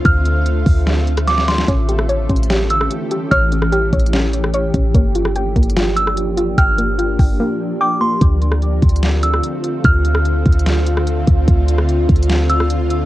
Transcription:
0.00 1.64 D3 medium
0.00 4.91 A3 medium
0.00 1.64 C4 medium
0.00 1.64 F4 medium
0.05 0.64 D2 loud
0.05 0.83 F6 loud
0.05 kick loud
0.05 closed hi-hat medium
0.25 closed hi-hat medium
0.46 closed hi-hat medium
0.66 1.64 D2 loud
0.66 kick loud
0.66 open hi-hat medium
0.87 snare loud
0.87 closed hi-hat medium
1.07 closed hi-hat medium
1.17 cross-stick loud
1.17 closed hi-hat medium
1.27 1.47 D6 medium
1.27 snare medium
1.27 closed hi-hat medium
1.38 snare medium
1.48 1.67 C6 medium
1.48 snare loud
1.48 closed hi-hat medium
1.58 snare loud
1.68 2.27 A1 loud
1.68 4.91 E3 medium
1.68 2.28 C#4 loud
1.68 4.91 C#4 medium
1.68 8.17 G4 medium
1.68 kick loud
1.68 closed hi-hat medium
1.89 2.49 G4 medium
1.89 closed hi-hat medium
1.99 cross-stick loud
2.09 3.30 C#5 medium
2.09 closed hi-hat medium
2.29 2.88 A1 loud
2.29 3.51 C#4 medium
2.29 kick loud
2.29 closed hi-hat medium
2.36 closed hi-hat medium
2.43 closed hi-hat medium
2.50 3.10 G4 loud
2.50 snare loud
2.50 closed hi-hat medium
2.70 2.90 E6 medium
2.70 closed hi-hat medium
2.81 cross-stick medium
2.91 closed hi-hat medium
3.11 3.71 G4 medium
3.11 closed hi-hat medium
3.31 3.90 A1 loud
3.31 3.92 C#5 loud
3.31 4.09 F6 loud
3.31 kick loud
3.31 closed hi-hat medium
3.52 4.12 C#4 medium
3.52 closed hi-hat medium
3.62 cross-stick loud
3.72 4.95 G4 loud
3.72 closed hi-hat medium
3.93 4.71 A1 loud
3.93 4.53 C#5 medium
3.93 kick loud
3.93 closed hi-hat medium
3.99 closed hi-hat medium
4.06 closed hi-hat medium
4.13 4.73 C#4 loud
4.13 snare loud
4.13 closed hi-hat medium
4.33 closed hi-hat medium
4.44 cross-stick loud
4.54 4.95 C#5 loud
4.54 closed hi-hat medium
4.74 4.94 A1 loud
4.74 4.95 C#4 medium
4.74 kick loud
4.74 closed hi-hat medium
4.95 5.54 G1 loud
4.95 8.18 F3 medium
4.95 8.18 A#3 medium
4.95 5.55 A#3 medium
4.95 8.18 D4 medium
4.95 kick loud
4.95 closed hi-hat medium
5.15 5.75 F4 medium
5.15 closed hi-hat medium
5.25 cross-stick loud
5.36 6.57 G5 medium
5.36 closed hi-hat medium
5.56 6.54 G1 loud
5.56 6.77 A#3 medium
5.56 kick loud
5.56 closed hi-hat medium
5.63 closed hi-hat medium
5.70 closed hi-hat medium
5.77 6.36 F4 medium
5.77 snare loud
5.77 closed hi-hat medium
5.97 6.16 E6 medium
5.97 closed hi-hat medium
6.07 cross-stick medium
6.17 closed hi-hat medium
6.37 6.97 F4 medium
6.37 closed hi-hat medium
6.58 7.17 G1 loud
6.58 7.18 G5 loud
6.58 7.36 F6 loud
6.58 kick loud
6.58 closed hi-hat medium
6.78 7.39 A#3 medium
6.78 closed hi-hat medium
6.99 8.21 F4 medium
6.99 closed hi-hat medium
7.19 7.39 G1 loud
7.19 7.79 G5 medium
7.19 kick loud
7.19 open hi-hat medium
7.40 8.00 A#3 loud
7.81 8.21 G5 loud
7.81 8.00 D6 medium
8.01 8.21 A#3 medium
8.01 8.20 C6 medium
8.21 8.80 D2 loud
8.21 13.05 D3 medium
8.21 13.05 A3 medium
8.21 13.05 C4 medium
8.21 13.05 F4 medium
8.21 kick loud
8.21 closed hi-hat medium
8.42 closed hi-hat medium
8.52 cross-stick loud
8.62 closed hi-hat medium
8.82 9.41 D2 loud
8.82 kick loud
8.82 closed hi-hat soft
8.89 closed hi-hat medium
8.96 closed hi-hat medium
9.03 snare loud
9.03 closed hi-hat medium
9.23 9.43 E6 medium
9.23 closed hi-hat medium
9.34 cross-stick medium
9.44 closed hi-hat medium
9.64 closed hi-hat medium
9.84 10.43 D2 loud
9.84 10.62 F6 loud
9.84 kick loud
9.84 closed hi-hat medium
10.05 closed hi-hat medium
10.15 cross-stick loud
10.25 closed hi-hat medium
10.46 11.24 D2 loud
10.46 kick loud
10.46 closed hi-hat medium
10.52 closed hi-hat medium
10.59 closed hi-hat medium
10.66 snare loud
10.66 closed hi-hat medium
10.86 closed hi-hat medium
10.97 cross-stick loud
11.07 closed hi-hat medium
11.27 11.47 D2 loud
11.27 kick loud
11.27 closed hi-hat medium
11.48 12.07 D2 loud
11.48 kick loud
11.48 closed hi-hat medium
11.68 closed hi-hat medium
11.78 cross-stick loud
11.89 closed hi-hat medium
12.09 13.05 D2 loud
12.09 kick medium
12.09 closed hi-hat soft
12.16 closed hi-hat medium
12.23 closed hi-hat medium
12.30 snare loud
12.30 closed hi-hat medium
12.50 12.69 E6 medium
12.50 closed hi-hat medium
12.60 cross-stick medium
12.70 closed hi-hat medium
12.90 closed hi-hat medium

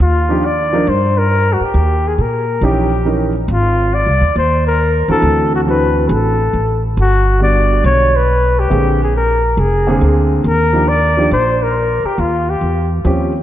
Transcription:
0.00 0.83 D#2 medium
0.00 0.47 F4 medium
0.29 0.42 F3 medium
0.29 0.42 D4 medium
0.29 0.42 D#4 medium
0.29 0.43 G4 medium
0.46 0.91 D5 medium
0.73 0.85 F3 medium
0.73 0.86 D4 medium
0.73 0.86 D#4 medium
0.73 0.86 A#4 medium
0.87 1.56 G2 medium
0.87 1.20 C5 medium
1.18 1.55 A#4 medium
1.53 1.65 F#4 medium
1.60 2.09 G4 medium
1.60 muted upright bass stroke soft
1.74 2.15 D#2 medium
2.08 2.16 G#4 medium
2.16 2.59 A#2 medium
2.16 2.23 G#4 medium
2.22 2.66 A#4 medium
2.61 3.44 A#1 medium
2.61 2.88 E3 medium
2.61 2.89 C#4 medium
2.61 2.89 D#4 medium
2.61 2.89 G4 medium
2.61 3.36 G4 medium
3.05 3.32 E3 medium
3.05 3.32 C#4 medium
3.05 3.32 D#4 medium
3.05 3.32 A#4 medium
3.48 4.02 G#1 medium
3.48 3.96 F4 medium
3.95 4.37 D5 medium
4.07 4.20 C2 medium
4.21 4.35 D#2 medium
4.36 5.05 D#2 medium
4.36 4.64 C5 medium
4.67 5.07 A#4 medium
5.08 5.22 D#2 medium
5.08 5.64 E3 medium
5.08 5.64 C4 medium
5.08 5.64 D4 medium
5.08 5.64 F#4 medium
5.08 5.51 A4 medium
5.22 6.05 D2 medium
5.55 5.61 F#4 medium
5.66 6.33 E3 medium
5.66 6.34 C4 medium
5.66 6.34 D4 soft
5.66 6.34 F#4 medium
5.66 6.10 B4 medium
6.08 6.50 A1 medium
6.08 6.15 G#4 medium
6.13 6.84 A4 medium
6.53 6.94 A1 medium
6.97 7.80 G1 medium
6.97 7.39 F#4 medium
7.39 8.07 D3 soft
7.39 8.07 G3 soft
7.39 8.08 B3 soft
7.39 8.08 F#4 medium
7.39 7.82 D5 medium
7.84 8.67 B1 medium
7.84 8.18 C#5 medium
8.16 8.61 B4 medium
8.59 9.01 G4 medium
8.70 9.54 A#1 medium
8.70 8.97 D3 medium
8.70 8.97 A#3 medium
8.70 8.97 C4 medium
8.70 8.97 G#4 medium
9.04 9.15 G#4 medium
9.16 9.61 A#4 medium
9.57 9.98 F1 medium
9.57 10.31 G#4 medium
9.87 10.42 D3 medium
9.87 10.42 A#3 medium
9.87 10.42 C4 medium
9.87 10.42 G#4 medium
10.01 10.41 D2 medium
10.44 11.27 D#2 medium
10.44 10.90 A#4 medium
10.73 10.86 F3 medium
10.73 10.86 D4 medium
10.73 10.87 D#4 medium
10.73 10.87 G4 medium
10.89 11.32 D5 medium
11.17 11.30 F3 medium
11.17 11.30 D4 medium
11.17 11.30 D#4 medium
11.17 11.31 G4 medium
11.31 12.00 A#1 medium
11.31 11.64 C5 medium
11.63 12.08 A#4 medium
12.04 12.21 G4 medium
12.04 muted upright bass stroke soft
12.18 12.58 D#2 medium
12.18 12.51 F4 medium
12.50 12.92 G4 medium
12.61 13.01 E2 medium
13.05 13.43 D#2 medium
13.05 13.31 F3 medium
13.05 13.31 C4 medium
13.05 13.31 C#4 medium
13.05 13.32 G4 medium

